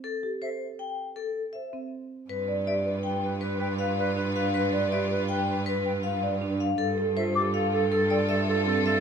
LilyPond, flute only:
\new Staff \with { instrumentName = "Flute" } { \time 6/4 \key a \minor \tempo 4 = 160 r4 e''8 r1 r8 | \key g \mixolydian r4 e''8 r2 g''8 r2 | r4 e''8 r2 g''8 r2 | r4 e''8 d'''8 r4. g''8 r2 | }